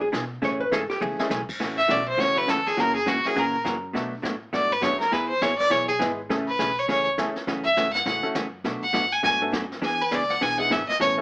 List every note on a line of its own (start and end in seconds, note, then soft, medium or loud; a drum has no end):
0.00 0.13 G#2 medium
0.00 0.08 G#4 medium
0.12 0.42 B2 loud
0.12 0.24 E3 medium
0.12 0.24 B3 medium
0.12 0.24 D4 medium
0.12 0.24 G#4 medium
0.12 kick soft
0.12 snare medium
0.12 hi-hat pedal medium
0.42 0.71 A2 medium
0.42 0.62 C#3 medium
0.42 0.62 E3 medium
0.42 0.62 A3 medium
0.42 0.62 C#4 medium
0.42 0.62 G#4 medium
0.42 0.61 C#5 medium
0.42 brush sweep medium
0.42 kick soft
0.42 snare medium
0.60 0.72 B4 loud
0.71 0.89 G#2 loud
0.71 0.83 C#3 medium
0.71 0.83 E3 medium
0.71 0.83 A3 medium
0.71 0.83 C#4 medium
0.71 0.83 G#4 medium
0.71 0.89 A4 medium
0.71 kick soft
0.71 snare medium
0.71 hi-hat pedal medium
0.90 1.01 G4 medium
0.90 muted upright bass stroke soft
0.90 snare soft
1.01 1.17 C#2 medium
1.01 1.21 C#3 medium
1.01 1.21 E3 medium
1.01 1.21 A3 medium
1.01 1.21 C#4 medium
1.01 1.49 G#4 medium
1.01 1.21 G#4 medium
1.01 high tom medium
1.18 1.30 G#3 medium
1.18 1.30 A3 medium
1.18 1.30 C#4 medium
1.18 1.30 E4 medium
1.18 1.30 G#4 medium
1.18 muted upright bass stroke soft
1.18 snare medium
1.30 1.47 B1 loud
1.30 1.41 C#3 medium
1.30 1.41 E3 medium
1.30 1.42 A3 medium
1.30 1.42 C#4 medium
1.30 1.42 G#4 medium
1.30 snare medium
1.30 hi-hat pedal medium
1.49 muted upright bass stroke soft
1.49 kick medium
1.49 crash medium
1.60 1.89 A1 medium
1.60 1.80 C#3 medium
1.60 1.80 E3 medium
1.60 1.80 A3 medium
1.60 1.80 C#4 medium
1.60 1.80 F#4 medium
1.60 brush sweep soft
1.60 kick soft
1.60 snare soft
1.78 1.93 E5 loud
1.88 2.18 B1 medium
1.88 2.00 C#3 medium
1.88 2.00 E3 medium
1.88 2.00 A3 medium
1.88 2.00 C#4 medium
1.88 2.00 F#4 medium
1.88 2.08 D5 medium
1.88 kick soft
1.88 snare medium
1.88 hi-hat pedal medium
2.08 2.21 C5 loud
2.18 2.47 C#2 medium
2.18 2.38 C#3 medium
2.18 2.38 E3 medium
2.18 2.38 A3 medium
2.18 2.38 C#4 medium
2.18 2.38 F#4 medium
2.18 2.39 C#5 loud
2.18 brush sweep medium
2.18 kick soft
2.18 snare soft
2.36 2.47 F#3 medium
2.36 2.47 A3 medium
2.36 2.47 C#4 medium
2.36 2.47 E4 medium
2.36 2.47 F#4 medium
2.36 2.51 B4 loud
2.47 2.77 E2 medium
2.47 2.59 C#3 medium
2.47 2.59 E3 medium
2.47 2.59 A3 medium
2.47 2.59 C#4 medium
2.47 2.59 F#4 medium
2.47 2.68 A4 medium
2.47 kick soft
2.47 snare medium
2.47 hi-hat pedal medium
2.67 2.81 G#4 medium
2.67 snare soft
2.77 3.06 F#2 medium
2.77 2.97 C#3 medium
2.77 2.97 E3 medium
2.77 2.94 F#3 medium
2.77 2.94 A#3 medium
2.77 2.97 A#3 medium
2.77 2.94 C#4 medium
2.77 2.97 C#4 medium
2.77 2.94 E4 medium
2.77 2.94 F#4 medium
2.77 2.97 F#4 medium
2.77 2.95 A#4 medium
2.77 brush sweep medium
2.77 kick soft
2.77 snare medium
2.95 3.09 G#4 medium
3.06 3.23 G#2 medium
3.06 3.17 C#3 medium
3.06 3.17 E3 medium
3.06 3.18 A#3 medium
3.06 3.17 C#4 medium
3.06 3.18 F#4 medium
3.06 3.28 F#4 medium
3.06 kick soft
3.06 snare medium
3.06 hi-hat pedal medium
3.24 3.35 F#3 medium
3.24 3.35 A#3 medium
3.24 3.35 C#4 medium
3.24 3.35 E4 medium
3.24 3.35 F#4 medium
3.24 3.40 G#4 medium
3.24 muted upright bass stroke soft
3.24 snare soft
3.36 3.65 A#2 medium
3.36 3.56 C#3 medium
3.36 3.56 E3 medium
3.36 3.56 A#3 medium
3.36 3.56 C#4 medium
3.36 3.56 F#4 medium
3.36 3.67 A#4 medium
3.36 brush sweep soft
3.36 kick soft
3.36 snare soft
3.64 3.94 F#2 loud
3.64 3.76 C#3 medium
3.64 3.76 E3 medium
3.64 3.76 A#3 medium
3.64 3.76 C#4 medium
3.64 3.76 F#4 medium
3.64 kick soft
3.64 snare medium
3.64 hi-hat pedal medium
3.93 4.14 B2 medium
3.93 4.23 B2 medium
3.93 4.14 F#3 medium
3.93 4.14 A3 medium
3.93 4.11 A3 medium
3.93 4.11 B3 medium
3.93 4.15 D4 medium
3.93 4.11 D4 medium
3.93 4.15 F#4 medium
3.93 4.11 F#4 medium
3.93 4.12 A4 medium
3.93 brush sweep medium
3.93 kick soft
3.93 snare medium
4.22 4.53 A2 medium
4.22 4.34 B2 medium
4.22 4.35 F#3 medium
4.22 4.35 A3 medium
4.22 4.35 D4 medium
4.22 4.35 F#4 medium
4.22 kick soft
4.22 snare medium
4.22 hi-hat pedal medium
4.53 4.82 G#2 medium
4.53 4.73 B2 medium
4.53 4.73 F#3 medium
4.53 4.73 A3 medium
4.53 4.73 D4 medium
4.53 4.73 F#4 medium
4.53 4.74 D5 medium
4.53 brush sweep medium
4.53 kick soft
4.53 snare soft
4.72 4.84 B4 medium
4.81 5.11 F#2 loud
4.81 4.93 B2 medium
4.81 4.93 F#3 medium
4.81 4.93 A3 medium
4.81 4.99 A3 medium
4.81 4.99 B3 medium
4.81 4.93 D4 medium
4.81 4.99 D4 medium
4.81 4.93 F#4 medium
4.81 4.99 F#4 medium
4.81 4.99 G#4 medium
4.81 5.00 C#5 medium
4.81 kick soft
4.81 snare medium
4.81 hi-hat pedal medium
5.00 5.14 A#4 medium
5.00 snare soft
5.12 5.41 E2 medium
5.12 5.32 E3 medium
5.12 5.32 B3 medium
5.12 5.32 E4 medium
5.12 5.32 G#4 medium
5.12 5.28 B4 medium
5.12 brush sweep medium
5.12 kick soft
5.12 snare soft
5.29 5.43 C5 medium
5.41 5.70 A1 medium
5.41 5.53 E3 medium
5.41 5.53 B3 medium
5.41 5.53 E4 medium
5.41 5.53 G#4 medium
5.41 5.57 C#5 medium
5.41 kick soft
5.41 snare medium
5.41 hi-hat pedal medium
5.58 5.73 D5 loud
5.58 snare soft
5.70 6.00 B1 medium
5.70 5.90 E3 medium
5.70 5.90 B3 medium
5.70 5.91 E4 medium
5.70 5.91 G#4 medium
5.70 5.87 C#5 medium
5.70 brush sweep medium
5.70 kick soft
5.70 snare soft
5.88 5.95 G#4 medium
5.99 6.29 G#1 medium
5.99 6.11 E3 medium
5.99 6.17 G#3 medium
5.99 6.11 B3 medium
5.99 6.17 B3 medium
5.99 6.11 E4 medium
5.99 6.17 E4 medium
5.99 6.11 G#4 medium
5.99 6.17 G#4 medium
5.99 6.17 B4 medium
5.99 kick soft
5.99 snare medium
5.99 hi-hat pedal medium
6.29 6.58 A1 medium
6.29 6.49 C#3 medium
6.29 6.50 E3 medium
6.29 6.46 A3 medium
6.29 6.50 A3 medium
6.29 6.46 C#4 medium
6.29 6.50 C#4 medium
6.29 6.46 E4 medium
6.29 6.50 G#4 medium
6.29 6.46 G#4 medium
6.29 6.46 A4 medium
6.29 brush sweep medium
6.29 kick soft
6.29 snare medium
6.48 6.80 B4 medium
6.59 6.88 B1 medium
6.59 6.70 C#3 medium
6.59 6.70 E3 medium
6.59 6.70 A3 medium
6.59 6.70 C#4 medium
6.59 6.70 G#4 medium
6.59 kick soft
6.59 snare medium
6.59 hi-hat pedal medium
6.79 6.89 C#5 medium
6.88 7.17 C#2 medium
6.88 7.08 C#3 medium
6.88 7.08 E3 medium
6.88 7.08 A3 medium
6.88 7.08 C#4 medium
6.88 7.09 G#4 medium
6.88 7.06 C#5 medium
6.88 brush sweep medium
6.88 kick soft
6.88 snare soft
7.18 7.35 E2 medium
7.18 7.29 C#3 medium
7.18 7.29 E3 medium
7.18 7.34 A3 medium
7.18 7.29 A3 medium
7.18 7.34 C#4 medium
7.18 7.30 C#4 medium
7.18 7.34 E4 medium
7.18 7.34 G#4 medium
7.18 7.29 G#4 medium
7.18 7.34 A4 medium
7.18 kick soft
7.18 snare medium
7.18 hi-hat pedal medium
7.36 muted upright bass stroke soft
7.36 snare soft
7.47 7.76 F#2 medium
7.47 7.67 C#3 medium
7.47 7.67 E3 medium
7.47 7.67 A3 medium
7.47 7.68 C#4 medium
7.47 7.67 F#4 medium
7.47 brush sweep medium
7.47 kick soft
7.47 snare soft
7.64 7.92 E5 loud
7.77 8.05 G#2 medium
7.77 7.88 C#3 medium
7.77 7.88 E3 medium
7.77 7.88 A3 medium
7.77 7.88 C#4 medium
7.77 7.88 F#4 medium
7.77 kick soft
7.77 snare medium
7.77 hi-hat pedal medium
7.93 8.04 F#5 loud
7.93 snare soft
8.06 8.22 A2 medium
8.06 8.26 C#3 medium
8.06 8.26 E3 medium
8.06 8.26 A3 medium
8.06 8.26 C#4 medium
8.06 8.26 F#4 medium
8.06 8.23 F#5 medium
8.06 brush sweep medium
8.06 kick soft
8.06 snare soft
8.23 8.34 A3 medium
8.23 8.34 C#4 medium
8.23 8.34 E4 medium
8.23 8.34 F#4 medium
8.23 8.34 A4 medium
8.23 muted upright bass stroke soft
8.35 8.64 F#2 loud
8.35 8.46 C#3 medium
8.35 8.46 E3 medium
8.35 8.47 A3 medium
8.35 8.47 C#4 medium
8.35 8.46 F#4 medium
8.35 kick soft
8.35 snare medium
8.35 hi-hat pedal medium
8.64 8.81 B2 medium
8.64 8.84 B2 medium
8.64 8.84 F#3 medium
8.64 8.85 A3 medium
8.64 8.85 D4 medium
8.64 8.85 F#4 medium
8.64 brush sweep soft
8.64 kick soft
8.64 snare soft
8.82 9.14 F#5 loud
8.82 muted upright bass stroke soft
8.93 9.23 A2 medium
8.93 9.04 B2 medium
8.93 9.04 F#3 medium
8.93 9.05 A3 medium
8.93 9.05 D4 medium
8.93 9.05 F#4 medium
8.93 kick soft
8.93 snare medium
8.93 hi-hat pedal medium
9.12 9.23 G#5 loud
9.23 9.52 G#2 medium
9.23 9.43 B2 medium
9.23 9.43 F#3 medium
9.23 9.43 A3 medium
9.23 9.43 D4 medium
9.23 9.43 F#4 medium
9.23 9.34 G#5 loud
9.23 brush sweep soft
9.23 kick soft
9.23 snare soft
9.42 9.52 A3 medium
9.42 9.52 B3 medium
9.42 9.52 D4 medium
9.42 9.52 F#4 medium
9.42 9.52 A4 medium
9.52 9.82 F#2 loud
9.52 9.63 B2 medium
9.52 9.64 F#3 medium
9.52 9.64 A3 medium
9.52 9.64 D4 medium
9.52 9.64 F#4 medium
9.52 kick soft
9.52 snare medium
9.52 hi-hat pedal medium
9.72 snare soft
9.82 10.11 E2 medium
9.82 10.02 E3 medium
9.82 10.02 B3 medium
9.82 10.02 D4 medium
9.82 10.02 G#4 medium
9.82 10.03 G#5 medium
9.82 brush sweep soft
9.82 kick soft
9.82 snare medium
10.02 10.16 B4 medium
10.11 10.40 C#2 medium
10.11 10.22 E3 medium
10.11 10.22 B3 medium
10.11 10.23 D4 medium
10.11 10.23 G#4 medium
10.11 10.32 D5 medium
10.11 kick soft
10.11 snare medium
10.11 hi-hat pedal medium
10.30 10.44 F#5 loud
10.30 snare soft
10.41 10.70 B1 medium
10.41 10.61 E3 medium
10.41 10.61 B3 medium
10.41 10.61 D4 medium
10.41 10.61 G#4 medium
10.41 10.59 G#5 loud
10.41 brush sweep soft
10.41 kick soft
10.41 snare soft
10.58 10.69 G#3 medium
10.58 10.69 B3 medium
10.58 10.69 D4 medium
10.58 10.69 E4 medium
10.58 10.69 G#4 medium
10.58 10.74 F#5 loud
10.70 10.87 G#1 medium
10.70 10.81 E3 medium
10.70 10.81 B3 medium
10.70 10.82 D4 medium
10.70 10.82 G#4 medium
10.70 10.88 E5 medium
10.70 kick soft
10.70 snare medium
10.70 hi-hat pedal medium
10.88 10.99 D#5 loud
10.88 muted upright bass stroke soft
10.88 snare soft
11.00 11.21 A1 medium
11.00 11.19 B2 medium
11.00 11.20 E3 medium
11.00 11.20 A3 medium
11.00 11.20 C#4 medium
11.00 11.20 A4 medium
11.00 11.11 C#5 medium
11.00 brush sweep medium
11.00 kick soft
11.00 snare medium
11.18 11.21 A3 medium
11.18 11.21 B3 medium
11.18 11.21 C#4 medium
11.18 11.21 E4 medium
11.18 11.21 A4 loud